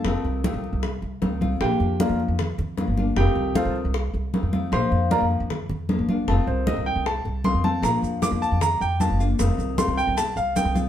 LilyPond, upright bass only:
\new Staff \with { instrumentName = "Upright bass" } { \clef bass \time 4/4 \key bes \major \tempo 4 = 154 f,,16 r16 c,8. c,8 c,8. c,8 d,8 c,8 | bes,,16 r16 f,8. f,8 f,8. f,8. g,,8. | f,,16 r16 c,8. c,8 c,8. c,8. f,8. | bes,,16 r16 f,8. f,8 f,8. f,8. ges,,8. |
f,,16 r16 c,8. c,8 c,8. c,8. f,8. | bes,,16 r16 f,8. f,8 f,8. f,8. ges,,8. | f,,16 r16 c,8. c,8 c,8. c,8. c,8. | }